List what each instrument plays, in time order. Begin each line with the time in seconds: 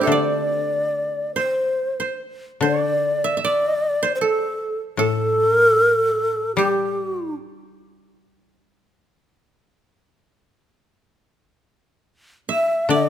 Already playing: koto A3 C4 D4 E4 D5
0.01 koto G4 A4, shakuhachi E5
0.07 koto D3 C5
0.12 koto D5, shakuhachi D5
1.35 shakuhachi C5, koto C5
2.00 koto C5
2.61 koto D3 C5, shakuhachi D5
2.79 koto D5
3.24 koto E5
3.37 koto E5
3.44 shakuhachi D5, koto D5
4.03 koto C5
4.15 shakuhachi C5
4.21 koto A4, shakuhachi A4
4.97 koto A2 A4, shakuhachi A4
5.52 shakuhachi A#4
5.67 shakuhachi A4
5.83 shakuhachi A#4
5.98 shakuhachi A4
6.56 koto G3 G4, shakuhachi G4
12.49 koto E5, shakuhachi E5
12.89 koto D3 D5
12.93 shakuhachi D5